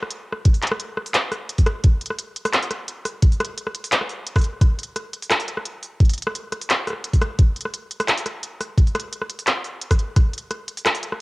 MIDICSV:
0, 0, Header, 1, 2, 480
1, 0, Start_track
1, 0, Tempo, 346821
1, 628, Time_signature, 4, 2, 24, 8
1, 15517, End_track
2, 0, Start_track
2, 0, Title_t, "Drums"
2, 35, Note_on_c, 9, 37, 57
2, 145, Note_on_c, 9, 42, 74
2, 174, Note_off_c, 9, 37, 0
2, 284, Note_off_c, 9, 42, 0
2, 449, Note_on_c, 9, 37, 54
2, 588, Note_off_c, 9, 37, 0
2, 625, Note_on_c, 9, 42, 83
2, 629, Note_on_c, 9, 36, 116
2, 750, Note_on_c, 9, 46, 39
2, 763, Note_off_c, 9, 42, 0
2, 767, Note_off_c, 9, 36, 0
2, 865, Note_on_c, 9, 39, 60
2, 865, Note_on_c, 9, 42, 50
2, 888, Note_off_c, 9, 46, 0
2, 928, Note_off_c, 9, 42, 0
2, 928, Note_on_c, 9, 42, 67
2, 991, Note_on_c, 9, 37, 88
2, 1004, Note_off_c, 9, 39, 0
2, 1066, Note_off_c, 9, 42, 0
2, 1104, Note_on_c, 9, 42, 79
2, 1129, Note_off_c, 9, 37, 0
2, 1243, Note_off_c, 9, 42, 0
2, 1347, Note_on_c, 9, 37, 58
2, 1470, Note_on_c, 9, 46, 68
2, 1485, Note_off_c, 9, 37, 0
2, 1581, Note_on_c, 9, 39, 119
2, 1581, Note_on_c, 9, 42, 86
2, 1608, Note_off_c, 9, 46, 0
2, 1720, Note_off_c, 9, 39, 0
2, 1720, Note_off_c, 9, 42, 0
2, 1824, Note_on_c, 9, 37, 57
2, 1824, Note_on_c, 9, 46, 39
2, 1963, Note_off_c, 9, 37, 0
2, 1963, Note_off_c, 9, 46, 0
2, 2067, Note_on_c, 9, 42, 77
2, 2191, Note_on_c, 9, 46, 67
2, 2195, Note_on_c, 9, 36, 61
2, 2205, Note_off_c, 9, 42, 0
2, 2303, Note_on_c, 9, 37, 84
2, 2303, Note_on_c, 9, 42, 38
2, 2329, Note_off_c, 9, 46, 0
2, 2334, Note_off_c, 9, 36, 0
2, 2442, Note_off_c, 9, 37, 0
2, 2442, Note_off_c, 9, 42, 0
2, 2544, Note_on_c, 9, 42, 86
2, 2549, Note_on_c, 9, 36, 118
2, 2682, Note_off_c, 9, 42, 0
2, 2688, Note_off_c, 9, 36, 0
2, 2784, Note_on_c, 9, 42, 51
2, 2849, Note_off_c, 9, 42, 0
2, 2849, Note_on_c, 9, 42, 68
2, 2911, Note_on_c, 9, 37, 56
2, 2987, Note_off_c, 9, 42, 0
2, 3025, Note_on_c, 9, 42, 82
2, 3050, Note_off_c, 9, 37, 0
2, 3164, Note_off_c, 9, 42, 0
2, 3268, Note_on_c, 9, 42, 74
2, 3394, Note_on_c, 9, 37, 82
2, 3394, Note_on_c, 9, 46, 65
2, 3406, Note_off_c, 9, 42, 0
2, 3507, Note_on_c, 9, 39, 126
2, 3507, Note_on_c, 9, 42, 85
2, 3532, Note_off_c, 9, 37, 0
2, 3532, Note_off_c, 9, 46, 0
2, 3634, Note_on_c, 9, 46, 67
2, 3645, Note_off_c, 9, 39, 0
2, 3645, Note_off_c, 9, 42, 0
2, 3747, Note_on_c, 9, 37, 56
2, 3747, Note_on_c, 9, 42, 70
2, 3773, Note_off_c, 9, 46, 0
2, 3885, Note_off_c, 9, 37, 0
2, 3885, Note_off_c, 9, 42, 0
2, 3988, Note_on_c, 9, 42, 85
2, 4127, Note_off_c, 9, 42, 0
2, 4226, Note_on_c, 9, 37, 55
2, 4226, Note_on_c, 9, 46, 69
2, 4365, Note_off_c, 9, 37, 0
2, 4365, Note_off_c, 9, 46, 0
2, 4463, Note_on_c, 9, 42, 84
2, 4467, Note_on_c, 9, 36, 127
2, 4597, Note_on_c, 9, 46, 37
2, 4602, Note_off_c, 9, 42, 0
2, 4605, Note_off_c, 9, 36, 0
2, 4710, Note_on_c, 9, 37, 81
2, 4710, Note_on_c, 9, 42, 52
2, 4735, Note_off_c, 9, 46, 0
2, 4771, Note_off_c, 9, 42, 0
2, 4771, Note_on_c, 9, 42, 71
2, 4849, Note_off_c, 9, 37, 0
2, 4910, Note_off_c, 9, 42, 0
2, 4951, Note_on_c, 9, 42, 82
2, 5077, Note_on_c, 9, 37, 57
2, 5090, Note_off_c, 9, 42, 0
2, 5187, Note_on_c, 9, 42, 72
2, 5215, Note_off_c, 9, 37, 0
2, 5316, Note_on_c, 9, 46, 65
2, 5325, Note_off_c, 9, 42, 0
2, 5426, Note_on_c, 9, 39, 127
2, 5426, Note_on_c, 9, 42, 87
2, 5455, Note_off_c, 9, 46, 0
2, 5551, Note_on_c, 9, 37, 54
2, 5564, Note_off_c, 9, 39, 0
2, 5564, Note_off_c, 9, 42, 0
2, 5665, Note_on_c, 9, 46, 38
2, 5689, Note_off_c, 9, 37, 0
2, 5803, Note_off_c, 9, 46, 0
2, 5904, Note_on_c, 9, 42, 84
2, 6031, Note_on_c, 9, 36, 70
2, 6033, Note_on_c, 9, 37, 78
2, 6033, Note_on_c, 9, 46, 28
2, 6043, Note_off_c, 9, 42, 0
2, 6068, Note_off_c, 9, 46, 0
2, 6068, Note_on_c, 9, 46, 38
2, 6110, Note_off_c, 9, 46, 0
2, 6110, Note_on_c, 9, 46, 50
2, 6146, Note_on_c, 9, 42, 41
2, 6169, Note_off_c, 9, 36, 0
2, 6171, Note_off_c, 9, 37, 0
2, 6248, Note_off_c, 9, 46, 0
2, 6284, Note_off_c, 9, 42, 0
2, 6383, Note_on_c, 9, 36, 126
2, 6385, Note_on_c, 9, 37, 53
2, 6385, Note_on_c, 9, 42, 86
2, 6522, Note_off_c, 9, 36, 0
2, 6524, Note_off_c, 9, 37, 0
2, 6524, Note_off_c, 9, 42, 0
2, 6627, Note_on_c, 9, 42, 51
2, 6688, Note_off_c, 9, 42, 0
2, 6688, Note_on_c, 9, 42, 64
2, 6826, Note_off_c, 9, 42, 0
2, 6864, Note_on_c, 9, 37, 51
2, 6864, Note_on_c, 9, 42, 83
2, 7003, Note_off_c, 9, 37, 0
2, 7003, Note_off_c, 9, 42, 0
2, 7104, Note_on_c, 9, 42, 73
2, 7230, Note_on_c, 9, 46, 60
2, 7243, Note_off_c, 9, 42, 0
2, 7342, Note_on_c, 9, 37, 80
2, 7342, Note_on_c, 9, 39, 127
2, 7342, Note_on_c, 9, 42, 82
2, 7368, Note_off_c, 9, 46, 0
2, 7470, Note_on_c, 9, 46, 63
2, 7480, Note_off_c, 9, 37, 0
2, 7480, Note_off_c, 9, 39, 0
2, 7480, Note_off_c, 9, 42, 0
2, 7583, Note_on_c, 9, 42, 68
2, 7609, Note_off_c, 9, 46, 0
2, 7711, Note_on_c, 9, 37, 54
2, 7722, Note_off_c, 9, 42, 0
2, 7824, Note_on_c, 9, 42, 81
2, 7849, Note_off_c, 9, 37, 0
2, 7963, Note_off_c, 9, 42, 0
2, 8064, Note_on_c, 9, 46, 63
2, 8202, Note_off_c, 9, 46, 0
2, 8306, Note_on_c, 9, 36, 123
2, 8306, Note_on_c, 9, 42, 35
2, 8370, Note_off_c, 9, 42, 0
2, 8370, Note_on_c, 9, 42, 45
2, 8433, Note_off_c, 9, 42, 0
2, 8433, Note_on_c, 9, 42, 56
2, 8433, Note_on_c, 9, 46, 37
2, 8444, Note_off_c, 9, 36, 0
2, 8488, Note_off_c, 9, 42, 0
2, 8488, Note_on_c, 9, 42, 66
2, 8548, Note_off_c, 9, 42, 0
2, 8548, Note_on_c, 9, 42, 50
2, 8571, Note_off_c, 9, 46, 0
2, 8608, Note_off_c, 9, 42, 0
2, 8608, Note_on_c, 9, 42, 65
2, 8672, Note_on_c, 9, 37, 77
2, 8747, Note_off_c, 9, 42, 0
2, 8787, Note_on_c, 9, 42, 77
2, 8810, Note_off_c, 9, 37, 0
2, 8926, Note_off_c, 9, 42, 0
2, 9024, Note_on_c, 9, 37, 53
2, 9024, Note_on_c, 9, 42, 67
2, 9152, Note_on_c, 9, 46, 63
2, 9162, Note_off_c, 9, 37, 0
2, 9162, Note_off_c, 9, 42, 0
2, 9268, Note_on_c, 9, 39, 127
2, 9268, Note_on_c, 9, 42, 79
2, 9290, Note_off_c, 9, 46, 0
2, 9406, Note_off_c, 9, 39, 0
2, 9406, Note_off_c, 9, 42, 0
2, 9509, Note_on_c, 9, 37, 50
2, 9509, Note_on_c, 9, 46, 36
2, 9551, Note_off_c, 9, 37, 0
2, 9551, Note_on_c, 9, 37, 41
2, 9589, Note_off_c, 9, 37, 0
2, 9589, Note_on_c, 9, 37, 34
2, 9647, Note_off_c, 9, 46, 0
2, 9727, Note_off_c, 9, 37, 0
2, 9744, Note_on_c, 9, 42, 82
2, 9873, Note_on_c, 9, 36, 70
2, 9874, Note_on_c, 9, 46, 61
2, 9883, Note_off_c, 9, 42, 0
2, 9985, Note_on_c, 9, 37, 77
2, 9985, Note_on_c, 9, 42, 35
2, 10011, Note_off_c, 9, 36, 0
2, 10012, Note_off_c, 9, 46, 0
2, 10124, Note_off_c, 9, 37, 0
2, 10124, Note_off_c, 9, 42, 0
2, 10224, Note_on_c, 9, 42, 77
2, 10227, Note_on_c, 9, 36, 122
2, 10363, Note_off_c, 9, 42, 0
2, 10365, Note_off_c, 9, 36, 0
2, 10465, Note_on_c, 9, 42, 46
2, 10529, Note_off_c, 9, 42, 0
2, 10529, Note_on_c, 9, 42, 61
2, 10592, Note_on_c, 9, 37, 53
2, 10667, Note_off_c, 9, 42, 0
2, 10709, Note_on_c, 9, 42, 76
2, 10730, Note_off_c, 9, 37, 0
2, 10847, Note_off_c, 9, 42, 0
2, 10946, Note_on_c, 9, 42, 66
2, 11072, Note_on_c, 9, 37, 77
2, 11072, Note_on_c, 9, 46, 64
2, 11085, Note_off_c, 9, 42, 0
2, 11186, Note_on_c, 9, 39, 124
2, 11186, Note_on_c, 9, 42, 76
2, 11211, Note_off_c, 9, 37, 0
2, 11211, Note_off_c, 9, 46, 0
2, 11315, Note_on_c, 9, 46, 70
2, 11325, Note_off_c, 9, 39, 0
2, 11325, Note_off_c, 9, 42, 0
2, 11430, Note_on_c, 9, 37, 52
2, 11430, Note_on_c, 9, 42, 65
2, 11453, Note_off_c, 9, 46, 0
2, 11568, Note_off_c, 9, 37, 0
2, 11568, Note_off_c, 9, 42, 0
2, 11668, Note_on_c, 9, 42, 78
2, 11806, Note_off_c, 9, 42, 0
2, 11911, Note_on_c, 9, 37, 51
2, 11911, Note_on_c, 9, 46, 67
2, 12049, Note_off_c, 9, 37, 0
2, 12049, Note_off_c, 9, 46, 0
2, 12147, Note_on_c, 9, 36, 112
2, 12151, Note_on_c, 9, 42, 80
2, 12277, Note_on_c, 9, 46, 40
2, 12285, Note_off_c, 9, 36, 0
2, 12289, Note_off_c, 9, 42, 0
2, 12387, Note_on_c, 9, 37, 78
2, 12387, Note_on_c, 9, 42, 47
2, 12415, Note_off_c, 9, 46, 0
2, 12452, Note_off_c, 9, 42, 0
2, 12452, Note_on_c, 9, 42, 63
2, 12525, Note_off_c, 9, 37, 0
2, 12590, Note_off_c, 9, 42, 0
2, 12631, Note_on_c, 9, 42, 75
2, 12755, Note_on_c, 9, 37, 55
2, 12770, Note_off_c, 9, 42, 0
2, 12867, Note_on_c, 9, 42, 67
2, 12893, Note_off_c, 9, 37, 0
2, 12995, Note_on_c, 9, 46, 70
2, 13005, Note_off_c, 9, 42, 0
2, 13105, Note_on_c, 9, 39, 120
2, 13105, Note_on_c, 9, 42, 77
2, 13133, Note_off_c, 9, 46, 0
2, 13244, Note_off_c, 9, 39, 0
2, 13244, Note_off_c, 9, 42, 0
2, 13347, Note_on_c, 9, 46, 39
2, 13485, Note_off_c, 9, 46, 0
2, 13584, Note_on_c, 9, 42, 78
2, 13713, Note_on_c, 9, 36, 63
2, 13713, Note_on_c, 9, 37, 74
2, 13713, Note_on_c, 9, 46, 68
2, 13722, Note_off_c, 9, 42, 0
2, 13827, Note_on_c, 9, 42, 37
2, 13851, Note_off_c, 9, 36, 0
2, 13851, Note_off_c, 9, 37, 0
2, 13851, Note_off_c, 9, 46, 0
2, 13965, Note_off_c, 9, 42, 0
2, 14066, Note_on_c, 9, 37, 57
2, 14066, Note_on_c, 9, 42, 78
2, 14067, Note_on_c, 9, 36, 117
2, 14204, Note_off_c, 9, 37, 0
2, 14204, Note_off_c, 9, 42, 0
2, 14205, Note_off_c, 9, 36, 0
2, 14302, Note_on_c, 9, 42, 48
2, 14364, Note_off_c, 9, 42, 0
2, 14364, Note_on_c, 9, 42, 63
2, 14502, Note_off_c, 9, 42, 0
2, 14541, Note_on_c, 9, 37, 52
2, 14541, Note_on_c, 9, 42, 77
2, 14679, Note_off_c, 9, 37, 0
2, 14679, Note_off_c, 9, 42, 0
2, 14781, Note_on_c, 9, 42, 70
2, 14908, Note_on_c, 9, 46, 72
2, 14919, Note_off_c, 9, 42, 0
2, 15024, Note_on_c, 9, 37, 85
2, 15024, Note_on_c, 9, 39, 115
2, 15024, Note_on_c, 9, 42, 83
2, 15047, Note_off_c, 9, 46, 0
2, 15151, Note_on_c, 9, 46, 70
2, 15163, Note_off_c, 9, 37, 0
2, 15163, Note_off_c, 9, 39, 0
2, 15163, Note_off_c, 9, 42, 0
2, 15264, Note_on_c, 9, 42, 65
2, 15289, Note_off_c, 9, 46, 0
2, 15392, Note_on_c, 9, 37, 56
2, 15402, Note_off_c, 9, 42, 0
2, 15517, Note_off_c, 9, 37, 0
2, 15517, End_track
0, 0, End_of_file